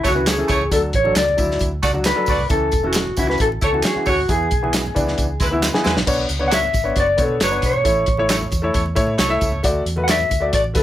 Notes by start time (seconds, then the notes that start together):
0.04 C#2 A3 E4 C#5, kick, snare, closed hi-hat, tambourine, high conga
0.08 F#4
0.14 E3 C#4 B4, high conga
0.27 A3 E4 G#4 C#5, snare, clap, closed hi-hat, tambourine
0.37 E3 C#4 A4
0.48 C#2 A3 E4 C#5, kick, closed hi-hat, tambourine
0.62 low conga
0.71 D2 F#3 D4 A4, kick, closed hi-hat, tambourine, muted conga
0.93 A1 C#5, kick, closed hi-hat
1.04 F#3 D4 A4, high conga
1.16 C#2 D5, snare, clap, closed hi-hat, tambourine
1.29 muted conga, low conga
1.37 D2 F#3 D4 E4, kick, closed hi-hat, tambourine, high conga
1.51 snare
1.59 D2, kick, closed hi-hat, tambourine, muted conga
1.83 C#2 A3 F#4 D5, kick, snare, closed hi-hat, tambourine, high conga
1.93 F#3 D4 F#4, high conga
2.05 A3 F#4 B4 D5, snare, clap, closed hi-hat, tambourine
2.15 F#3 D4 A4, muted conga
2.26 D2 A3 F#4 D5, kick, open hi-hat, tambourine
2.39 C2, low conga
2.49 C#2 E3 C#4 A4, kick, closed hi-hat, tambourine, muted conga
2.72 E1, kick, closed hi-hat, tambourine
2.83 E3 C#4 F#4 A4, high conga
2.93 snare, clap, closed hi-hat, tambourine, muted conga
3.07 muted conga, low conga
3.16 C#2 E3 C#4 E4 F#4, kick, closed hi-hat, tambourine, high conga
3.30 B4, snare
3.38 A1 A4, kick, closed hi-hat, tambourine, muted conga
3.52 muted conga
3.61 C#2 A3 E4 A4 C#5, kick, closed hi-hat, tambourine, high conga
3.72 E3 C#4 F#4, high conga
3.83 A3 E4 G#4 C#5, snare, clap, closed hi-hat, tambourine
3.95 E3 C#4 F#4, muted fingered electric bass stroke, muted conga
4.06 D2 A3 E4 F#4 C#5, kick, open hi-hat, tambourine
4.19 low conga
4.28 E2 E3 B3 G#4, kick, closed hi-hat, tambourine, muted conga, low conga
4.43 muted conga
4.51 B1, kick, closed hi-hat, tambourine
4.63 E3 B3 G#4, high conga
4.74 snare, clap, closed hi-hat, tambourine
4.87 low conga
4.95 C#2 E3 B3 D4, kick, closed hi-hat, tambourine, high conga
5.08 snare
5.18 C#2, kick, closed hi-hat, tambourine
5.40 D2 G#3 E4 B4, kick, snare, closed hi-hat, tambourine, high conga
5.51 E3 B3 E4, high conga
5.63 G#3 E4 B4, snare, clap, tambourine
5.73 E3 B3 G#4, snare
5.84 E2 G#3 E4 B4, snare, tambourine
5.97 A#1, snare, low conga
6.07 B1 B3 D4 C#5, kick, crash, tambourine, muted conga
6.19 muted conga
6.29 C#2, closed hi-hat, tambourine
6.39 B3 D4 C#5, high conga
6.48 F#3 D4 C#5 F#5, closed hi-hat
6.52 E5, snare, clap, tambourine
6.63 muted conga, low conga
6.73 G#1, kick, closed hi-hat, tambourine, high conga
6.84 B3 D4 C#5
6.96 F#1 B3 F#4 D5, kick, closed hi-hat, tambourine
7.00 D5
7.07 muted conga
7.17 B2 B3 D4 C#5, kick, closed hi-hat, tambourine, high conga
7.22 A4
7.28 high conga
7.40 F#1 F#3 D4 C#5, snare, clap, closed hi-hat, tambourine
7.44 B4
7.51 B3 D4 C#5
7.62 B2 C#5, kick, closed hi-hat, tambourine
7.73 low conga
7.84 A1 A3 E4 C#5, kick, closed hi-hat, tambourine
8.06 A1, kick, closed hi-hat
8.17 A3 E4 C#5, high conga
8.29 A3 E4 C#5, snare, clap, closed hi-hat, tambourine
8.41 muted conga, low conga
8.51 E2, kick, closed hi-hat, tambourine, high conga
8.62 A3 E4 C#5
8.74 E2 A3 E4 C#5, kick, closed hi-hat, tambourine, muted conga
8.86 muted conga
8.95 A2 A3 E4 C#5, kick, closed hi-hat, tambourine, high conga
9.07 high conga
9.17 C2 A3 E4 C#5, snare, clap, closed hi-hat, tambourine, muted conga
9.28 A3 E4 E5
9.41 C#2, kick, closed hi-hat, tambourine
9.52 low conga
9.63 D2 A3 F#4 D5, kick, closed hi-hat, tambourine
9.86 E2, closed hi-hat
9.96 A3 F#4 B4, high conga
10.04 F#5
10.08 A3 F#4 D5 E5, snare, clap, closed hi-hat, tambourine
10.20 muted conga, low conga
10.29 D2, kick, closed hi-hat, tambourine, high conga
10.40 A3 F#4 D5
10.53 A1 A3 F#4 D5, kick, closed hi-hat, tambourine, muted conga
10.64 muted conga
10.74 D3 A3 F#4 A4 B4, kick, snare, closed hi-hat, tambourine, high conga